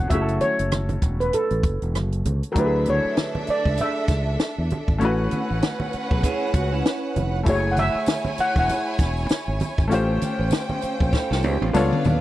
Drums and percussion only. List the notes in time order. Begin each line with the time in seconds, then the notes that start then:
0.10 kick, closed hi-hat, muted conga
0.28 closed hi-hat
0.41 closed hi-hat, high conga
0.59 closed hi-hat
0.71 cross-stick, closed hi-hat, muted conga, high conga
0.89 closed hi-hat, high conga, low conga
1.02 kick, closed hi-hat, muted conga
1.21 closed hi-hat
1.33 closed hi-hat, muted conga, low conga
1.50 closed hi-hat
1.63 kick, closed hi-hat, muted conga
1.82 closed hi-hat
1.95 cross-stick, closed hi-hat, muted conga, high conga
2.12 closed hi-hat
2.25 closed hi-hat, muted conga, high conga, low conga
2.43 closed hi-hat
2.56 kick, closed hi-hat, muted conga
2.86 closed hi-hat, muted conga, high conga
3.17 snare, closed hi-hat, muted conga, high conga
3.35 high conga, low conga
3.47 closed hi-hat, muted conga
3.65 kick
3.77 closed hi-hat, low conga
4.08 kick, snare, closed hi-hat, muted conga
4.39 snare, closed hi-hat
4.70 closed hi-hat, muted conga, high conga, low conga
4.88 kick
5.01 closed hi-hat
5.31 closed hi-hat, high conga
5.62 snare, closed hi-hat, muted conga, high conga
5.80 high conga, low conga
5.93 closed hi-hat
6.11 kick
6.23 kick, closed hi-hat, muted conga, low conga
6.54 kick, closed hi-hat
6.86 snare, closed hi-hat
7.16 closed hi-hat, muted conga, high conga, low conga
7.46 kick, closed hi-hat, tambourine, muted conga
7.77 closed hi-hat, tambourine, muted conga, high conga
8.06 snare, closed hi-hat, tambourine, muted conga, high conga
8.25 tambourine, high conga, low conga
8.38 closed hi-hat, tambourine, muted conga
8.56 kick
8.69 closed hi-hat, tambourine, muted conga, low conga
8.98 kick, snare, closed hi-hat, tambourine, muted conga
9.17 tambourine
9.29 snare, closed hi-hat, tambourine, muted conga
9.60 closed hi-hat, tambourine, muted conga, high conga, low conga
9.77 kick, tambourine
9.91 closed hi-hat, tambourine
10.22 closed hi-hat, tambourine, muted conga, high conga
10.51 snare, closed hi-hat, tambourine, muted conga, high conga
10.69 high conga, low conga
10.82 closed hi-hat, tambourine, muted conga
11.00 kick
11.13 kick, snare, tambourine, muted conga, low conga
11.32 snare
11.43 high tom, tambourine, muted conga
11.62 high tom
11.74 mid tom, tambourine
11.93 mid tom
12.04 floor tom, tambourine, muted conga, high conga, low conga